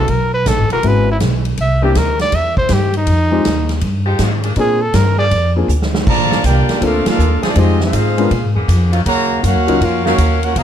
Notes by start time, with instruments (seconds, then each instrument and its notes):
Already playing: trumpet A4
0.08 upright bass B1, trumpet A#4, kick, ride
0.34 trumpet B4
0.46 upright bass A#1, trumpet A4, kick, snare, hi-hat pedal, ride
0.58 upright bass G#1
0.70 upright bass E1, saxophone section E3 G#3 C#4 F#4, trumpet A#4, ride
0.83 upright bass G#1, grand piano G#3 B3 C#4 E4 F#4, kick, ride
0.88 trumpet B4
1.11 trumpet E4
1.20 upright bass B1, kick, snare, hi-hat pedal, ride
1.45 ride
1.57 upright bass C2, trumpet E5, kick, ride
1.81 saxophone section E3 A#3 C4 G4, grand piano A#3 C4 D4 E4 G4, trumpet G4
1.95 upright bass D2, trumpet A#4, kick, snare, hi-hat pedal, ride
2.19 trumpet D5, snare, ride
2.32 upright bass E2, trumpet E5, kick, ride
2.57 trumpet C5, kick
2.69 upright bass G2, kick, snare, hi-hat pedal, ride
2.73 trumpet G4
2.94 trumpet D#4, ride
3.07 upright bass F2, kick, ride
3.31 grand piano G#3 C4 D#4 F4 G4
3.44 upright bass D#2, kick, snare, hi-hat pedal, ride
3.69 snare, ride
3.81 upright bass G2, kick, ride
4.06 saxophone section F3 G#3 D#4 G4
4.19 upright bass G#2, kick, snare, hi-hat pedal, ride
4.44 saxophone section F3 A#3 D4 G#4, ride
4.56 upright bass A#2, grand piano A#3 C4 D4 F4 G#4, kick, ride
4.60 trumpet G#4
4.82 trumpet A4
4.94 upright bass G2, trumpet A#4, kick, snare, hi-hat pedal, ride
5.18 saxophone section F3 A#3 D4 G#4, trumpet D5
5.31 upright bass F2, kick, ride
5.56 grand piano A#3 C4 D4 F4 G#4
5.68 upright bass D2, hi-hat pedal
5.82 snare
5.94 snare
6.07 upright bass A#1, trombone section D3 F3 A#3, trumpet section F4 D5 A5 A#5, kick, crash
6.31 saxophone section F3 A#3 D4 A4, snare
6.44 upright bass C2, trombone section A#3 D4 G4, trumpet section F4 A#4 D5 G5, kick, hi-hat pedal, ride
6.68 muted upright bass stroke, snare, ride
6.81 upright bass D2, trombone section A3 D4 F4, grand piano A#3 C4 D4 F4 A4, kick, ride
6.85 trumpet section D4 A4 A#4 F5
7.06 trombone section A#3 D4 F4, trumpet section D4 A4 A#4 F5, muted upright bass stroke, snare, ride
7.18 upright bass D#2, hi-hat pedal
7.43 trombone section F3 A3 D4, saxophone section F3 C4 D#4 G#4, trumpet section A#3 A4, muted upright bass stroke, snare, ride
7.47 trumpet section F4 D5
7.55 upright bass F2, grand piano G#3 C4 D#4 F4 G4, trombone section G#3 C4 D#4, trumpet section C4 F4 G#4 D#5, kick, ride
7.80 trombone section G#3 C4 F4, trumpet section D#4 C5 F5, snare
7.84 trumpet section G#4
7.93 upright bass G#2, kick, hi-hat pedal, ride
8.17 grand piano G#3 B3 D4 F4 A#4, ride
8.31 upright bass A#2, kick, ride
8.43 upright bass G#2
8.55 upright bass F2, saxophone section D3 A#3 B3 G#4
8.68 upright bass F2, kick, hi-hat pedal, ride
8.93 saxophone section D#3 F#3 C#4 F4, ride
9.05 upright bass D#2, trombone section C#3 F#3 A#3, trumpet section F#4 C#5 F5 A#5, kick, ride
9.42 upright bass F#2, trombone section A#3 C#4 F#4, trumpet section C#4 A#4 F5 F#5, kick, hi-hat pedal, ride
9.55 upright bass D#2
9.67 upright bass C#2, grand piano F#3 C#4 D#4 F4 A#4, ride
9.80 upright bass F2, trombone section A#3 C#4 F4, trumpet section C#4 F#4 A#4 F5, kick, ride
10.05 saxophone section D#3 F#3 C#4 F4, trombone section A#3 C#4 F#4, trumpet section C#4 F#4 A#4 F5, snare
10.18 upright bass D#2, kick, hi-hat pedal, ride
10.42 trombone section A#3 C#4 F#4, trumpet section C#4 F4 A#4 F#5, ride
10.55 upright bass C#2, trombone section B2 F3 A#3, trumpet section G#4 D#5 F5 A#5, kick, ride